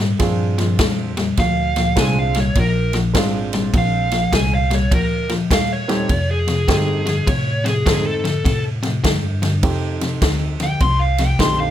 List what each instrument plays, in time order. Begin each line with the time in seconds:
Already playing: upright bass G#2
0.00 overdriven electric guitar A#2 G3
0.19 upright bass G2, overdriven electric guitar A#2 F3, upright piano C4 D4 F4 G#4, kick, snare, ride
0.58 overdriven electric guitar A#2 F3, snare, ride
0.79 upright bass F2, overdriven electric guitar A#2 G3, kick, snare, ride
1.17 overdriven electric guitar A#2 G3, snare, ride
1.37 upright bass D2, overdriven electric guitar A#2 F3, lead electric guitar F5, kick, snare, ride
1.76 overdriven electric guitar A#2 F3, snare, ride
1.96 upright bass C2, overdriven electric guitar A#2 G3, upright piano G#3 C4 D4 F4, lead electric guitar G#5, kick, snare, ride
2.19 lead electric guitar F5
2.34 overdriven electric guitar A#2 G3, snare, ride
2.40 lead electric guitar C#5
2.55 upright bass A#1, overdriven electric guitar A#2 F3, kick, ride
2.59 lead electric guitar A#4
2.93 overdriven electric guitar A#2 F3, snare, ride
3.14 upright bass G#1, overdriven electric guitar A#2 G3, upright piano G#3 C4 D4 F4, kick, snare, ride
3.53 overdriven electric guitar A#2 G3, snare, ride
3.73 upright bass A#1, overdriven electric guitar A#2 F3, kick, ride
3.78 lead electric guitar F5
4.11 overdriven electric guitar A#2 F3, snare, ride
4.32 upright bass C2, overdriven electric guitar A#2 G3, lead electric guitar G#5, kick, snare, ride
4.55 lead electric guitar F5
4.70 overdriven electric guitar A#2 G3, lead electric guitar C#5, snare, ride
4.91 upright bass D2, overdriven electric guitar A#2 F3, lead electric guitar A#4, kick, ride
5.29 overdriven electric guitar A#2 F3, snare, ride
5.50 upright bass D#2, overdriven electric guitar A#2 G3, lead electric guitar F5, kick, snare, ride
5.73 lead electric guitar C#5
5.88 overdriven electric guitar A#2 G3, upright piano A3 C4 D#4 G4, snare, ride
6.09 overdriven electric guitar F2 C3, upright bass F2, kick, ride
6.31 lead electric guitar G#4
6.48 overdriven electric guitar F2 C3, snare, ride
6.68 overdriven electric guitar F2 D3, upright bass G2, upright piano A3 C4 D#4 G4, lead electric guitar G#4, kick, snare, ride
7.06 overdriven electric guitar F2 D3, snare, ride
7.27 overdriven electric guitar F2 C3, upright bass A2, lead electric guitar C#5, kick, ride
7.64 overdriven electric guitar F2 C3, lead electric guitar G#4, snare, ride
7.86 overdriven electric guitar F2 D3, upright bass G#2, upright piano A3 C4 D#4 A4, kick, snare, ride
8.06 lead electric guitar A4
8.24 overdriven electric guitar F2 D3, snare, ride
8.45 overdriven electric guitar F2 C3, upright bass A2, kick, snare, ride
8.83 overdriven electric guitar F2 C3, snare, ride
9.04 overdriven electric guitar F2 D3, upright bass G2, kick, snare, ride
9.42 overdriven electric guitar F2 D3, snare, ride
9.63 upright bass F2, overdriven electric guitar F2 C3, upright piano A3 C4 D#4 G4, kick, ride
10.01 overdriven electric guitar F2 C3, snare, ride
10.22 upright bass D2, overdriven electric guitar F2 D3, kick, snare, ride
10.60 overdriven electric guitar F2 D3, lead electric guitar G5, snare, ride
10.80 upright bass C2, overdriven electric guitar F2 C3, lead electric guitar C6, kick, ride
10.99 lead electric guitar F5
11.18 overdriven electric guitar F2 C3, lead electric guitar G5, snare, ride
11.39 upright bass A#1, overdriven electric guitar F2 D3, upright piano A3 C4 D#4 G4, lead electric guitar C6, kick, snare, ride
11.60 lead electric guitar F5